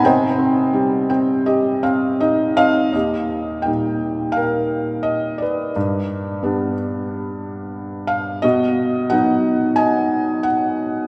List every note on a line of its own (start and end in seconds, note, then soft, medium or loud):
0.03 2.89 C3 medium
0.03 2.18 C5 medium
0.03 1.45 D#5 medium
0.03 1.08 G5 medium
0.38 1.08 C4 medium
0.73 2.17 G3 medium
1.10 1.81 C4 medium
1.10 1.44 G5 medium
1.46 2.89 G4 medium
1.46 1.81 D#5 medium
1.83 2.56 C4 medium
1.83 2.18 F5 medium
2.20 2.91 D#4 medium
2.20 2.55 D#5 medium
2.57 2.92 C4 medium
2.57 2.91 D#5 medium
2.57 2.94 F5 loud
2.93 5.71 D#2 soft
2.93 4.33 G4 soft
2.93 3.67 D#5 medium
3.62 5.71 A#2 soft
3.62 5.71 G3 soft
3.62 5.72 D#4 soft
3.62 4.37 G5 medium
4.32 5.00 F5 medium
4.37 5.72 A#4 medium
5.03 5.41 D#5 medium
5.38 6.04 D5 medium
5.42 6.72 B4 medium
5.76 8.40 G2 medium
6.43 8.40 G3 soft
6.43 8.39 B3 soft
6.43 8.40 D4 soft
8.07 8.44 F5 medium
8.42 11.07 B2 medium
8.42 9.75 F#4 medium
8.42 9.13 D#5 medium
9.10 11.07 F#3 medium
9.10 11.07 B3 soft
9.10 11.07 D#4 medium
9.10 9.80 F#5 medium
9.76 11.07 D#5 medium
9.76 10.46 G#5 medium
10.43 11.07 F#5 medium